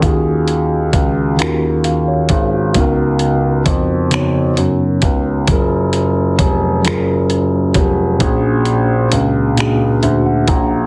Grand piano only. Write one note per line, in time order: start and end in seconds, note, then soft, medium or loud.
0.03 0.89 D#2 medium
0.93 1.35 C#2 medium
1.40 2.30 D#2 medium
2.30 2.75 G#1 medium
2.76 3.62 C#2 medium
3.66 4.53 F2 medium
4.58 4.99 F#2 medium
5.03 5.44 C#2 medium
5.48 6.35 F#1 medium
6.39 6.80 F1 medium
6.86 7.72 F#1 medium
7.76 8.21 F1 medium
8.21 9.08 A#1 medium
9.12 9.99 C#2 medium
10.03 10.44 D2 medium
10.48 10.87 A#1 medium